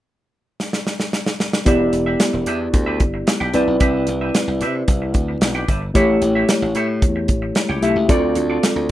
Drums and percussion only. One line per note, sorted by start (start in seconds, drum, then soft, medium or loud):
0.60 snare medium
0.73 snare medium
0.87 snare medium
1.00 snare medium
1.13 snare medium
1.26 snare medium
1.40 snare medium
1.53 snare medium
1.66 kick loud
1.66 closed hi-hat loud
1.93 closed hi-hat medium
2.20 snare loud
2.20 closed hi-hat medium
2.46 closed hi-hat medium
2.74 kick loud
2.74 closed hi-hat medium
3.00 kick medium
3.00 closed hi-hat medium
3.27 snare loud
3.27 closed hi-hat medium
3.54 closed hi-hat medium
3.80 kick loud
3.80 closed hi-hat loud
4.07 closed hi-hat medium
4.35 snare loud
4.35 closed hi-hat medium
4.61 closed hi-hat medium
4.88 kick loud
4.88 closed hi-hat medium
5.14 kick medium
5.14 closed hi-hat medium
5.41 snare loud
5.41 closed hi-hat medium
5.68 kick medium
5.68 closed hi-hat medium
5.95 kick loud
5.95 closed hi-hat loud
6.22 closed hi-hat medium
6.49 snare loud
6.49 closed hi-hat medium
6.75 closed hi-hat medium
7.02 kick loud
7.02 closed hi-hat medium
7.28 kick medium
7.28 closed hi-hat medium
7.55 snare loud
7.55 closed hi-hat medium
7.83 closed hi-hat medium
8.09 kick loud
8.09 closed hi-hat medium
8.35 closed hi-hat medium
8.63 snare loud
8.63 closed hi-hat medium